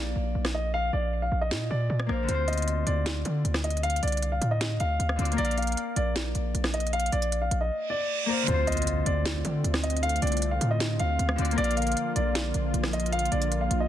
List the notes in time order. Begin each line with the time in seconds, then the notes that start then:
Already playing: A#1 A#3 A#4 D5 F5
0.16 A#1
0.35 A#1
0.45 cross-stick, snare
0.55 D#5
0.74 F5
0.93 A#1 D5
1.22 F5
1.32 A#1
1.41 D#5
1.51 A#2, snare
1.70 A#2 D5
1.90 A#2
2.00 cross-stick
2.06 A#1 A#3 A#4 C5 D5, cross-stick
2.12 F5
2.23 D3 C4
2.28 D2 F4 C5, closed hi-hat
2.35 C5
2.48 D#5, closed hi-hat, open hi-hat
2.53 closed hi-hat
2.58 closed hi-hat
2.62 closed hi-hat
2.68 closed hi-hat
2.87 D2 D5, closed hi-hat
3.06 snare, closed hi-hat
3.25 D3, closed hi-hat
3.45 D2, closed hi-hat
3.54 cross-stick, snare
3.64 D#5, closed hi-hat
3.70 closed hi-hat
3.77 closed hi-hat
3.83 F5, closed hi-hat
3.90 closed hi-hat
3.96 closed hi-hat
4.03 C2 D5, closed hi-hat, open hi-hat
4.08 closed hi-hat
4.12 closed hi-hat
4.17 closed hi-hat
4.22 closed hi-hat
4.32 F5
4.41 A2, closed hi-hat
4.51 D#5
4.61 snare, closed hi-hat
4.80 D2 F5, closed hi-hat
5.00 D2, closed hi-hat
5.09 cross-stick
5.16 D2 D3 C4 F4, closed hi-hat
5.22 D5, closed hi-hat
5.32 A#3, closed hi-hat
5.37 A#1 A#4 D5, closed hi-hat
5.44 F5, closed hi-hat
5.51 closed hi-hat
5.58 F5, closed hi-hat, open hi-hat
5.62 closed hi-hat
5.67 closed hi-hat
5.72 closed hi-hat
5.77 closed hi-hat
5.96 A#1 D5, closed hi-hat
6.16 snare, closed hi-hat
6.35 A#1, closed hi-hat
6.54 A#1, closed hi-hat
6.64 cross-stick, snare
6.74 D#5, closed hi-hat
6.80 closed hi-hat
6.87 closed hi-hat
6.93 F5, closed hi-hat
7.00 closed hi-hat
7.06 closed hi-hat
7.12 A#1 D5, closed hi-hat, open hi-hat
7.22 closed hi-hat
7.32 closed hi-hat
7.42 F5
7.51 A#1, closed hi-hat
7.61 D#5
7.71 reverse cymbal
7.90 D5
8.26 A#3 A#4 C5 D5
8.32 F5
8.42 D3 C4
8.48 D2 D3 A3 C4 F4 C5, closed hi-hat, impact
8.54 C5
8.67 D#5, closed hi-hat, open hi-hat
8.72 closed hi-hat
8.77 closed hi-hat
8.82 closed hi-hat
8.87 closed hi-hat
9.06 D2 D5, closed hi-hat
9.26 snare, closed hi-hat
9.45 D3, closed hi-hat
9.64 D2, closed hi-hat
9.74 cross-stick, snare
9.83 D#5, closed hi-hat
9.90 closed hi-hat
9.97 closed hi-hat
10.03 F5, closed hi-hat
10.09 closed hi-hat
10.16 closed hi-hat
10.22 C2 D5, closed hi-hat, open hi-hat
10.27 closed hi-hat
10.32 closed hi-hat
10.37 closed hi-hat
10.42 closed hi-hat
10.51 F5
10.61 A2, closed hi-hat
10.71 D#5
10.80 snare, closed hi-hat
10.99 D2 F5, closed hi-hat
11.19 D2, closed hi-hat
11.29 cross-stick
11.36 D2 D3 C4 F4, closed hi-hat
11.42 D5, closed hi-hat
11.51 A#3, closed hi-hat
11.56 A#1 F3 A#3 A#4 D5, closed hi-hat
11.64 F5, closed hi-hat
11.71 closed hi-hat
11.77 F5, closed hi-hat, open hi-hat
11.82 closed hi-hat
11.87 closed hi-hat
11.92 closed hi-hat
11.97 closed hi-hat
12.16 A#1 D5, closed hi-hat
12.35 snare, closed hi-hat
12.54 A#1, closed hi-hat
12.74 A#1, closed hi-hat
12.84 cross-stick, snare
12.93 D#5, closed hi-hat
13.00 closed hi-hat
13.06 closed hi-hat
13.12 F5, closed hi-hat
13.19 closed hi-hat
13.25 closed hi-hat
13.32 A#1 D5, closed hi-hat, open hi-hat
13.42 closed hi-hat
13.52 closed hi-hat
13.61 F5
13.71 A#1, closed hi-hat
13.80 D#5